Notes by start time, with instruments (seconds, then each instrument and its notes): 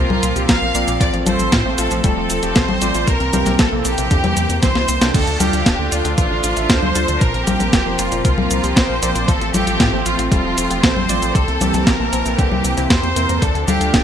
Already playing: analog polysynth F3 A#3 C4 A#4, string section F3 A#3 C4, violin section F4
0.10 analog synth bass C2, synth arpeggio sound A#2, high conga
0.23 analog synth bass C2, synth arpeggio sound A#2, closed hi-hat, cabasa
0.36 analog synth bass C2, synth arpeggio sound A#2, analog polysynth F3 A#3 C4 G4, closed hi-hat, cabasa
0.48 analog synth bass A#1, synth arpeggio sound F2, analog polysynth F3 A#3 C4 A#4, violin section F5, kick, snare, closed hi-hat, cabasa
0.62 analog synth bass A#1, synth arpeggio sound A#2
0.75 analog synth bass A#1, analog polysynth F3 A#3 C4 D5, synth arpeggio sound A#3, closed hi-hat, cabasa
0.88 analog synth bass A#1, synth arpeggio sound A#2, closed hi-hat, cabasa
1.00 analog synth bass A1, synth arpeggio sound F3, string section A3, violin section D5, kick, closed hi-hat, cabasa
1.14 analog synth bass A1, synth arpeggio sound F3, closed hi-hat
1.26 analog synth bass A1, analog polysynth F3 A3 C4 A4, synth arpeggio sound F3, violin section C5, closed hi-hat, high conga, cabasa
1.39 analog synth bass A1, synth arpeggio sound F3, closed hi-hat, cabasa
1.52 analog synth bass A2, synth arpeggio sound F4, kick, snare, closed hi-hat, cabasa
1.65 analog synth bass A1, analog polysynth F3 A3 C4 C5, synth arpeggio sound F3
1.78 analog synth bass A1, synth arpeggio sound F4, violin section A4, closed hi-hat, cabasa
1.91 analog synth bass A1, synth arpeggio sound F3, closed hi-hat, cabasa
2.04 analog synth bass E1, analog polysynth F3 A3 C4 A4, synth arpeggio sound G3, violin section A4, kick, closed hi-hat, cabasa
2.17 analog synth bass E1, synth arpeggio sound F3
2.30 analog synth bass E1, synth arpeggio sound F3, closed hi-hat, cabasa
2.43 analog synth bass E1, analog polysynth F3 A3 C4 G4, synth arpeggio sound F3, closed hi-hat, cabasa
2.55 analog synth bass A1, synth arpeggio sound C3, analog polysynth F3 A3 C4 A4, violin section C5, kick, snare, closed hi-hat, cabasa
2.69 analog synth bass A1, synth arpeggio sound F2, high conga
2.82 analog synth bass A1, analog polysynth F3 A3 C4 D5, synth arpeggio sound F4, closed hi-hat, cabasa
2.95 analog synth bass A1, synth arpeggio sound F3, closed hi-hat, cabasa
3.07 analog synth bass C2, synth arpeggio sound C3, string section E3 A#3, violin section A#4, kick, closed hi-hat, cabasa
3.20 analog synth bass C2, synth arpeggio sound C3, closed hi-hat
3.33 analog synth bass C2, synth arpeggio sound C3, analog polysynth E3 A#3 C4 G4, closed hi-hat, high conga, cabasa
3.46 analog synth bass C2, synth arpeggio sound C3, snare, closed hi-hat, high conga, cabasa
3.59 analog synth bass A#1, synth arpeggio sound C4, violin section A4, kick, snare, closed hi-hat, cabasa
3.72 analog synth bass A#1, synth arpeggio sound C3, analog polysynth E3 A#3 C4 A4
3.85 analog synth bass A#1, synth arpeggio sound C4, violin section G4, closed hi-hat, cabasa
3.98 analog synth bass A#1, synth arpeggio sound C3, closed hi-hat, cabasa
4.11 analog synth bass E2, synth arpeggio sound D3, analog polysynth E3 A#3 C4 G4, kick, closed hi-hat, cabasa
4.24 analog synth bass E2, synth arpeggio sound C3, closed hi-hat, high conga
4.37 analog synth bass E2, synth arpeggio sound C3, closed hi-hat, cabasa
4.50 analog synth bass E2, synth arpeggio sound C3, closed hi-hat, cabasa
4.62 analog synth bass C2, synth arpeggio sound G2, analog polysynth E3 A#3 C4 E4, violin section C5, kick, snare, closed hi-hat, cabasa
4.75 analog synth bass C2, synth arpeggio sound C2, snare
4.88 analog synth bass C2, synth arpeggio sound C4, closed hi-hat, cabasa
5.01 analog synth bass C2, synth arpeggio sound C3, analog polysynth D4 F4 A4 G5, snare, closed hi-hat, cabasa
5.14 analog synth bass D2, synth arpeggio sound D3, string section F3 A3 D4, violin section A4, kick, closed hi-hat, crash, cabasa
5.27 analog synth bass D2, synth arpeggio sound D3, closed hi-hat
5.40 analog synth bass D2, synth arpeggio sound D3, analog polysynth D4 F4 A4 F5, violin section G4, closed hi-hat, high conga, cabasa
5.53 analog synth bass D2, synth arpeggio sound D3, closed hi-hat, cabasa
5.66 analog synth bass D1, synth arpeggio sound D4, kick, snare, closed hi-hat, cabasa
5.79 analog synth bass D2, synth arpeggio sound D3, analog polysynth D4 F4 A4 G5
5.91 analog synth bass D2, synth arpeggio sound D4, violin section F4, closed hi-hat, cabasa
6.05 analog synth bass D2, synth arpeggio sound D3, closed hi-hat, cabasa
6.18 analog synth bass A1, synth arpeggio sound E3, analog polysynth D4 F4 A4 F5, violin section F4, kick, closed hi-hat, cabasa
6.31 analog synth bass A1, synth arpeggio sound D3
6.44 analog synth bass A1, synth arpeggio sound D3, closed hi-hat, cabasa
6.56 analog synth bass A1, synth arpeggio sound D3, analog polysynth D4 F4 A4 E5, closed hi-hat, cabasa
6.69 analog synth bass D2, synth arpeggio sound A2, analog polysynth D4 F4 A4 F5, violin section C5, kick, snare, closed hi-hat, cabasa
6.83 analog synth bass D2, synth arpeggio sound D2, high conga
6.95 analog synth bass D2, analog polysynth D4 F4 A4 A5, synth arpeggio sound D4, closed hi-hat, cabasa
7.08 analog synth bass D2, synth arpeggio sound D3, closed hi-hat, cabasa
7.21 analog synth bass A#1, synth arpeggio sound A#2, string section A#3 C4, violin section A#4, kick, closed hi-hat, cabasa
7.34 analog synth bass A#1, synth arpeggio sound A#2, closed hi-hat
7.47 analog synth bass A#1, synth arpeggio sound A#2, analog polysynth F3 A#3 C4 A#4, violin section G4, closed hi-hat, high conga, cabasa
7.60 analog synth bass A#1, synth arpeggio sound A#2, closed hi-hat, high conga, cabasa
7.73 analog synth bass F1, synth arpeggio sound A#3, kick, snare, closed hi-hat, cabasa
7.86 analog synth bass F1, synth arpeggio sound A#2, analog polysynth F3 A#3 C4 C5
7.99 analog synth bass F1, synth arpeggio sound A#3, violin section F4, closed hi-hat, cabasa
8.12 analog synth bass F1, synth arpeggio sound A#2, closed hi-hat, cabasa
8.24 analog synth bass C2, synth arpeggio sound C3, analog polysynth F3 A#3 C4 A#4, violin section F4, kick, closed hi-hat, cabasa
8.38 analog synth bass C2, synth arpeggio sound A#2, high conga
8.51 analog synth bass C2, synth arpeggio sound A#2, closed hi-hat, cabasa
8.63 analog synth bass C2, synth arpeggio sound A#2, analog polysynth F3 A#3 C4 G4, closed hi-hat, cabasa
8.76 analog synth bass A#1, synth arpeggio sound F2, analog polysynth F3 A#3 C4 A#4, violin section C5, kick, snare, closed hi-hat, cabasa
8.90 analog synth bass A#1, synth arpeggio sound A#2
9.02 analog synth bass A#1, analog polysynth F3 A#3 C4 D5, synth arpeggio sound A#3, closed hi-hat, cabasa
9.15 analog synth bass A#1, synth arpeggio sound A#2, closed hi-hat, cabasa
9.28 analog synth bass A1, synth arpeggio sound F3, string section A3, violin section A4, kick, closed hi-hat, cabasa
9.41 analog synth bass A1, synth arpeggio sound F3, closed hi-hat
9.54 analog synth bass A1, analog polysynth F3 A3 C4 A4, synth arpeggio sound F3, violin section G4, closed hi-hat, high conga, cabasa
9.67 analog synth bass A1, synth arpeggio sound F3, closed hi-hat, cabasa
9.80 analog synth bass A2, synth arpeggio sound F4, kick, snare, closed hi-hat, cabasa
9.93 analog synth bass A1, analog polysynth F3 A3 C4 C5, synth arpeggio sound F3
10.06 analog synth bass A1, violin section F4, synth arpeggio sound F4, closed hi-hat, cabasa
10.19 analog synth bass A1, synth arpeggio sound F3, closed hi-hat, cabasa
10.31 analog synth bass E1, analog polysynth F3 A3 C4 A4, synth arpeggio sound G3, violin section F4, kick, closed hi-hat, cabasa
10.45 analog synth bass E1, synth arpeggio sound F3
10.57 analog synth bass E1, synth arpeggio sound F3, closed hi-hat, cabasa
10.70 analog synth bass E1, analog polysynth F3 A3 C4 G4, synth arpeggio sound F3, closed hi-hat, cabasa
10.83 analog synth bass A1, synth arpeggio sound C3, analog polysynth F3 A3 C4 A4, violin section C5, kick, snare, closed hi-hat, cabasa
10.96 analog synth bass A1, synth arpeggio sound F2, high conga
11.09 analog synth bass A1, analog polysynth F3 A3 C4 D5, synth arpeggio sound F4, closed hi-hat, cabasa
11.22 analog synth bass A1, synth arpeggio sound F3, closed hi-hat, cabasa
11.35 analog synth bass C2, synth arpeggio sound C3, string section E3 A#3, violin section A4, kick, closed hi-hat, cabasa
11.48 analog synth bass C2, synth arpeggio sound C3, closed hi-hat
11.61 analog synth bass C2, synth arpeggio sound C3, analog polysynth E3 A#3 C4 G4, closed hi-hat, high conga, cabasa
11.74 analog synth bass C2, synth arpeggio sound C3, closed hi-hat, high conga, cabasa
11.87 analog synth bass A#1, synth arpeggio sound C4, violin section A#4, kick, snare, closed hi-hat, cabasa
12.00 analog synth bass A#1, synth arpeggio sound C3, analog polysynth E3 A#3 C4 A5
12.13 analog synth bass A#1, synth arpeggio sound C4, closed hi-hat, cabasa
12.26 analog synth bass A#1, synth arpeggio sound C3, closed hi-hat, cabasa
12.38 analog synth bass C2, synth arpeggio sound D3, analog polysynth E3 A#3 C4 G4, violin section G4, kick, closed hi-hat, cabasa
12.51 analog synth bass C2, synth arpeggio sound C3, high conga
12.64 analog synth bass C2, synth arpeggio sound C3, closed hi-hat, cabasa
12.77 analog synth bass C2, synth arpeggio sound C3, analog polysynth E3 A#3 C4 E4, closed hi-hat, cabasa
12.90 analog synth bass E2, analog polysynth E3 A#3 C4 G4, synth arpeggio sound C4, violin section C5, kick, snare, closed hi-hat, cabasa
13.03 synth arpeggio sound C2, analog synth bass E2, closed hi-hat
13.16 analog synth bass E2, synth arpeggio sound C3, analog polysynth E3 A#3 C4 A#4, closed hi-hat, cabasa
13.29 analog synth bass E2, synth arpeggio sound G2, closed hi-hat, cabasa
13.42 analog synth bass D2, synth arpeggio sound D3, string section F3 A3 D4, violin section A4, kick, closed hi-hat, cabasa
13.55 analog synth bass D2, synth arpeggio sound D3, closed hi-hat
13.67 analog synth bass D2, synth arpeggio sound D3, analog polysynth D4 F4 A4 F5, violin section G4, closed hi-hat, high conga, cabasa
13.81 analog synth bass D2, synth arpeggio sound D3, closed hi-hat, cabasa
13.94 analog synth bass D1, synth arpeggio sound D4, kick, snare, closed hi-hat, cabasa